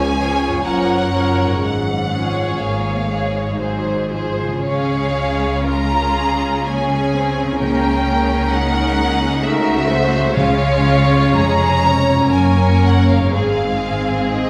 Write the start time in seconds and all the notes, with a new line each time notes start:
Already playing: C#2 C#3 F3 G#3 C#4 F4 G#4 C#5 G#5
0.18 F3 C#4 G#4 C#5
0.48 F#2
0.52 A#3
0.56 F4
0.61 F#1 C#5
0.65 F#2 F3 C#4 A#4 C#5 F#5
1.12 F3 C#4 A#4 C#5
1.44 G#2
1.48 G#3
1.53 F4
1.57 C#5
1.63 G#1 G#2 F#5
2.11 F3 C#4 G#4 C#5
2.60 G#1 G#2 A#3 F5
3.10 G#3 G#4 C#5
3.43 G#2
3.47 G#3
3.52 D#4
3.56 G#2 G#4 C5
3.61 G#1 F#3
4.11 F3 G#4 C5
4.43 C#3
4.48 G#3
4.52 F4
4.56 C#5
4.61 C#2 C#3 G#3 C#4 G#4 C#5 F5
5.14 C#4
5.65 C#4 F4 A#4 A#5
6.15 G#4
6.64 A#3 C#4 G#4 G#5
7.14 C4
7.43 C#3
7.47 A#3
7.51 E4
7.56 C#3 A#4 C#5
7.60 C#2 C#3 A#3 C#4 G5
8.07 A#3
8.52 D#4 F#5
9.44 A3 F#4 A#4 E5
9.90 C5
10.19 C#3
10.23 G#3
10.27 C#4
10.32 C#5
10.36 C#2 C#3 G#3 C#4 F4 C#5 F5
10.86 C#4
11.35 F1 F2 G#4 A#5
11.86 C#5
12.15 F#2
12.19 A#3
12.24 C#4
12.29 F#1 F#2 C#5
12.33 A#3 A#4 C#5 G#5
12.84 F#5
13.09 F5
13.16 G#2
13.20 G#3
13.24 C4
13.29 G#2 G#4
13.34 G#1 C4 G#4 F5
14.37 D#5